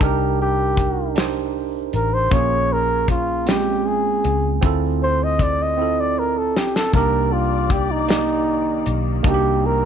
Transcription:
Already playing: tine electric piano G4 A#4
0.00 fingered electric bass C2, tine electric piano D4 D#4 G4 A#4, flugelhorn G4, kick, closed hi-hat
0.42 flugelhorn G4
0.77 kick, closed hi-hat
1.15 tine electric piano D4 D#4 G4, snare, closed hi-hat
1.19 tine electric piano C5
1.93 fingered electric bass A1, flugelhorn A#4, closed hi-hat
2.14 flugelhorn C5
2.31 fingered electric bass A#1, tine electric piano A#3 C#4 F4, flugelhorn C#5, kick, closed hi-hat
2.36 tine electric piano G#4
2.73 flugelhorn A#4
3.08 flugelhorn F4, kick, closed hi-hat
3.46 tine electric piano C4 C#4 F4, flugelhorn G4, snare, closed hi-hat
3.50 tine electric piano G#3
3.87 flugelhorn G#4
4.24 fingered electric bass C#2, closed hi-hat
4.61 fingered electric bass D2, tine electric piano C4 E4 F4, kick, closed hi-hat
4.66 tine electric piano A4
5.03 flugelhorn C5
5.24 flugelhorn D#5
5.39 flugelhorn D5, kick, closed hi-hat
5.62 flugelhorn D#5
5.77 tine electric piano C4 E4 F4
5.82 tine electric piano A4
6.00 flugelhorn D5
6.19 flugelhorn A#4
6.38 flugelhorn A4
6.55 fingered electric bass B1, flugelhorn G4, snare
6.76 flugelhorn A4, snare
6.93 fingered electric bass C2, string section D#3 A#3 D5, tine electric piano A#3 D4 D#4, flugelhorn A#4, kick, closed hi-hat
6.97 tine electric piano G4
7.33 flugelhorn F4
7.70 flugelhorn G4, kick, closed hi-hat
7.91 flugelhorn D#4
8.08 tine electric piano A#3 D#4 D5, snare, closed hi-hat
8.13 tine electric piano G4
8.86 fingered electric bass B1, closed hi-hat
9.23 fingered electric bass C2, tine electric piano A#3 D4 D#4, string section C4, flugelhorn G4, kick, closed hi-hat
9.27 tine electric piano F#4
9.34 tine electric piano G4
9.66 flugelhorn A#4

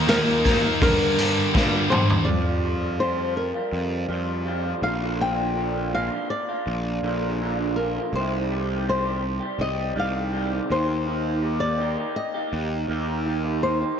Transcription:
Already playing: picked electric bass D#2
0.08 distorted electric guitar D#3 A#3 D#4, nylon-string guitar A#4, snare, open hi-hat
0.44 distorted electric guitar D#3 A#3 D#4, kick, snare, open hi-hat
0.82 distorted electric guitar G2 D3 G3, picked electric bass G2, nylon-string guitar A#4, kick, open hi-hat
1.18 distorted electric guitar G2 D3 G3, open hi-hat
1.54 distorted electric guitar G2 D3 G3, picked electric bass G2, kick, snare
1.90 distorted electric guitar G2 D3 G3, nylon-string guitar C5, mid tom
2.10 floor tom
2.25 picked electric bass F2, clean electric guitar F3 G3 C4, nylon-string guitar D5
2.29 clean electric guitar F4
2.63 clean electric guitar F3 G3 C4 F4
3.00 clean electric guitar F3 G3 C4 F4, nylon-string guitar C5
3.18 clean electric guitar G3 C4 F4
3.37 nylon-string guitar A#4, muted clean electric guitar stroke
3.54 clean electric guitar G3 C4 F4
3.72 picked electric bass F2
4.08 picked electric bass F2, clean electric guitar F3 G3 C4 F4
4.46 clean electric guitar F3 G3 C4 F4
4.64 clean electric guitar G3 C4 F4
4.82 picked electric bass A#1, clean electric guitar A#2 D3 A#3 D4 F4, nylon-string guitar F5
5.02 clean electric guitar A#3 D4 F4
5.20 clean electric guitar A#2 D3 A#3 D4 F4, nylon-string guitar G5
5.55 clean electric guitar D3 A#3 D4 F4
5.93 clean electric guitar A#2 D3 A#3 D4 F4, nylon-string guitar F5
6.12 clean electric guitar A#3 D4 F4
6.30 nylon-string guitar D5, muted clean electric guitar stroke
6.49 clean electric guitar A#3 D4 F4
6.67 picked electric bass A#1
7.03 picked electric bass A#1, clean electric guitar D3 A#3 D4 F4
7.40 clean electric guitar A#2 D3 A#3 D4 F4
7.58 clean electric guitar A#3 D4 F4
7.76 clean electric guitar D3 A#3 D4 F4, nylon-string guitar A#4
7.96 clean electric guitar A#3 D4 F4
8.13 picked electric bass C2, clean electric guitar C3 D#3 G3 C4 G4, nylon-string guitar C5
8.50 clean electric guitar D#3 G3 C4 G4
8.87 clean electric guitar C3 D#3 G3 C4 G4, nylon-string guitar C5
9.04 clean electric guitar G3 C4 G4
9.23 muted clean electric guitar stroke
9.40 clean electric guitar G3 C4 G4
9.59 picked electric bass C2, nylon-string guitar D#5
9.95 picked electric bass C2, clean electric guitar D#3 G3 C4 G4
9.99 nylon-string guitar F5
10.32 clean electric guitar C3 D#3 G3 C4 G4
10.51 clean electric guitar G3 C4 G4
10.69 picked electric bass D#2, clean electric guitar D#3 A#3 D#4 G4, nylon-string guitar C5
10.86 clean electric guitar A#3 D#4 G4
11.06 clean electric guitar D#3 A#3 D#4 G4
11.42 clean electric guitar D#3 A#3 D#4 G4
11.60 nylon-string guitar D5
11.79 clean electric guitar D#3 A#3 D#4 G4
11.97 clean electric guitar A#3 D#4 G4
12.16 nylon-string guitar D#5, muted clean electric guitar stroke
12.34 clean electric guitar A#3 D#4 G4
12.53 picked electric bass D#2
12.88 picked electric bass D#2, clean electric guitar D#3 A#3 D#4 G4
13.25 clean electric guitar D#3 A#3 D#4 G4
13.43 clean electric guitar A#3 D#4 G4
13.61 clean electric guitar D#3 A#3 D#4 G4, nylon-string guitar C5
13.81 clean electric guitar A#3 D#4 G4

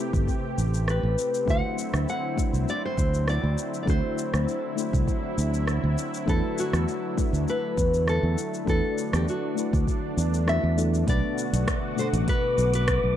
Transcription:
Already playing: analog synth pad C3 A3 C4 G4, fm electric piano A3 C4 E4, nylon-string guitar G4
0.00 fm electric piano G4 B4
0.13 fingered electric bass G1, kick, shaker
0.28 kick, shaker
0.58 fingered electric bass A1, shaker
0.74 shaker
0.88 nylon-string guitar B4, cross-stick, shaker
1.03 fingered electric bass A1
1.18 shaker
1.34 shaker
1.46 fingered electric bass D2, analog synth pad D3 F#3 E4, fm electric piano A3 D4 E4 F#4, kick, shaker
1.50 fm electric piano C5, nylon-string guitar F#5
1.79 shaker
1.94 fingered electric bass D2, cross-stick, shaker
2.08 nylon-string guitar F#5, shaker
2.36 fm electric piano A3 D4 E4 F#4 C5, kick, shaker
2.53 fingered electric bass C2, shaker
2.68 nylon-string guitar D5, shaker
2.85 nylon-string guitar C5
2.97 fingered electric bass D2, kick, shaker
3.14 shaker
3.28 nylon-string guitar D5, cross-stick, shaker
3.43 fingered electric bass D2
3.58 shaker
3.74 shaker
3.83 fm electric piano A3 D4, nylon-string guitar D5
3.87 fingered electric bass D2, fm electric piano E4 F#4 C5, nylon-string guitar C5, kick, shaker
4.18 shaker
4.34 fingered electric bass D2, cross-stick, shaker
4.48 shaker
4.76 fm electric piano A3 D4 E4 F#4 C5, shaker
4.93 fingered electric bass C2, kick, shaker
5.08 kick, shaker
5.38 fingered electric bass D2, shaker
5.54 shaker
5.68 cross-stick, shaker
5.84 fingered electric bass D2
5.98 shaker
6.14 shaker
6.26 fingered electric bass E2, fm electric piano A3 D4 E4 F#4 B4, analog synth pad A3, nylon-string guitar A4, kick, shaker
6.58 nylon-string guitar F#4, shaker
6.73 fingered electric bass E2, cross-stick, shaker
6.88 shaker
7.16 fm electric piano A3 D4 E4 F#4 B4, kick, shaker
7.33 fingered electric bass D2, shaker
7.48 nylon-string guitar B4, shaker
7.77 fingered electric bass E2, kick, shaker
7.94 shaker
8.08 nylon-string guitar A4, cross-stick, shaker
8.23 fingered electric bass E2
8.38 shaker
8.54 shaker
8.65 fingered electric bass E2, fm electric piano A3 D4 E4 F#4, analog synth pad D4, nylon-string guitar A4, kick, shaker
8.69 fm electric piano B4
8.98 shaker
9.13 fingered electric bass E2, nylon-string guitar G4, cross-stick, shaker
9.28 nylon-string guitar F#4, shaker
9.55 fm electric piano A3 D4 E4 F#4 B4, shaker
9.73 fingered electric bass D2, kick, shaker
9.87 kick, shaker
10.17 fingered electric bass E2, shaker
10.34 shaker
10.46 fm electric piano A3 D4 E4 F#4 B4, nylon-string guitar E5, cross-stick, shaker
10.64 fingered electric bass E2
10.77 fm electric piano A3 D4 E4 F#4 A4, shaker
10.94 shaker
11.06 fingered electric bass B1, analog synth pad B2 D3 A3 F#4, fm electric piano A3 B3 D4 F#4 B4, nylon-string guitar D5, synth texture D6, kick, closed hi-hat, shaker
11.38 shaker
11.53 fingered electric bass B1, closed hi-hat, shaker
11.68 kick, cross-stick, closed hi-hat, shaker
11.96 fm electric piano B2 A3 D4 F#4 A4, nylon-string guitar C5, shaker
12.13 fingered electric bass A1, closed hi-hat, shaker
12.28 nylon-string guitar B4, kick, closed hi-hat, shaker
12.58 fingered electric bass B1, shaker
12.73 nylon-string guitar B4, closed hi-hat, shaker
12.88 kick, cross-stick, closed hi-hat, shaker
13.04 fingered electric bass B1

